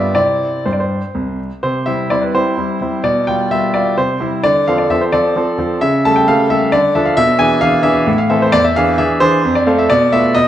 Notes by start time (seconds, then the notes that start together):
Already playing: G2 G3 B3 F4 D5 E5
0.15 C3 C4 E4 D5
0.65 G2 C5
0.73 D5
0.80 C5
1.15 C2
1.63 C3 C5
1.86 G3 C4 E4 E5
2.10 G3 C4 E4 D5
2.21 B4
2.34 G3 C4 E4 C5
2.58 G3 C4 E4
2.81 G3 C4 E4
3.04 B2 D5
3.27 G3 F4 G5
3.51 G3 F4 E5
3.74 G3 F4 D5
3.97 C3 C5
4.20 G3 C4 E4
4.44 D3 D5
4.68 F3 C4 A4 F5
4.78 D5
4.90 F3 C4 A4 E5
5.01 C5
5.12 F3 C4 A4 D5
5.36 F3 C4 A4
5.58 F3 C4 A4
5.81 C#3 E5
6.05 G3 A3 A4 A5
6.16 G5
6.28 G3 A3 A4 F5
6.50 G3 A3 A4 E5
6.72 D3 D5
6.95 F3 D4 A4 E5
7.06 F5
7.17 B2 E5
7.39 E3 D4 G#4 G#5
7.61 E3 D4 G#4 F5
7.83 E3 D4 G#4 E5
8.07 A2
8.18 F5
8.30 E3 C4 A4 E5
8.42 C5
8.52 E2 D5
8.65 E5
8.76 E3 D4 G#4 F5
8.98 E3 D4 G#4 E5
9.20 E3 D4 G#4 C5
9.45 F2
9.55 D5
9.66 A3 C4 A4 F5
9.79 E5
9.90 B2 D5
10.12 A3 B3 F4 E5
10.35 B2 D#5